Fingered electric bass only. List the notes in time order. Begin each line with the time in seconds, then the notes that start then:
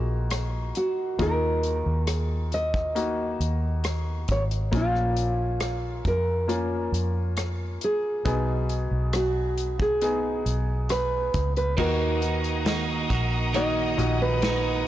Already playing: A#1
1.19 D#2
1.86 D#2
3.40 D#2
4.29 G#1
4.73 A#1
6.05 F2
6.92 F2
8.26 B1
8.91 B1
10.46 B1
11.34 C#2
11.78 D#2
13.10 A#1
13.98 A#1